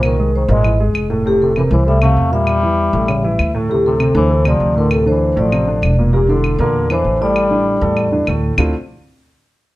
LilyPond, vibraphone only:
\new Staff \with { instrumentName = "Vibraphone" } { \time 4/4 \key d \minor \tempo 4 = 197 bes'4 c''8 dis''4 r4. | g'8 a'8 bes'8 c''8 e''8 f''4 e''8~ | e''2.~ e''8 r8 | g'8 a'4 c''4 d''4 bes'8 |
a'8 c''4 d''2 r8 | g'8 a'4 bes'4 c''4 d''8~ | d''2. r4 | r1 | }